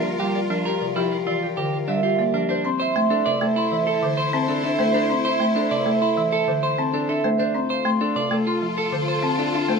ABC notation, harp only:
X:1
M:4/4
L:1/16
Q:1/4=98
K:Cmix
V:1 name="Harp"
[GBdef] f d f G d G f d G B f e G d B | [K:Am] c c' e c' A e A c' e A c c' a A e c | c c' e c' A e A c' e A c c' a A e c | c c' f c' A f A c' f A c c' a A f c |]